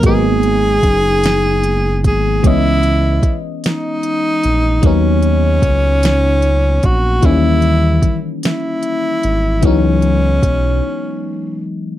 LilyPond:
<<
  \new Staff \with { instrumentName = "Tenor saxophone" } { \time 6/8 \key cis \dorian \tempo 4. = 50 gis'2~ gis'8 gis'8 | e'4 r8 dis'4. | cis'2~ cis'8 fis'8 | e'4 r8 e'4. |
cis'2~ cis'8 r8 | }
  \new Staff \with { instrumentName = "FM electric piano" } { \time 6/8 \key cis \dorian <fis gis ais b dis'>2. | <e gis b cis' dis''>2. | <fis ais b cis' dis'>2. | <dis e g ais cis'>2. |
<e fis gis b dis'>2. | }
  \new Staff \with { instrumentName = "Analog synth bass" } { \clef bass \time 6/8 \key cis \dorian gis,,4 fis,,4. gis,,8 | cis,4 ais,,8 r4 ais,,8 | dis,4 cis,4. ais,,8 | dis,4 gis,,8 r4 gis,,8 |
cis,4 b,,8 r4. | }
  \new DrumStaff \with { instrumentName = "Drums" } \drummode { \time 6/8 <hh bd>8 hh8 <hh bd>8 <hh sn>8 hh8 <hh bd>8 | <hh bd>8 hh8 <hh bd>8 <hh sn>8 hh8 hh8 | <hh bd>8 hh8 <hh bd>8 <hh sn>8 hh8 <hh bd>8 | <hh bd>8 hh8 <hh bd>8 <hh sn>8 hh8 hh8 |
<hh bd>8 hh8 <hh bd>8 r4. | }
>>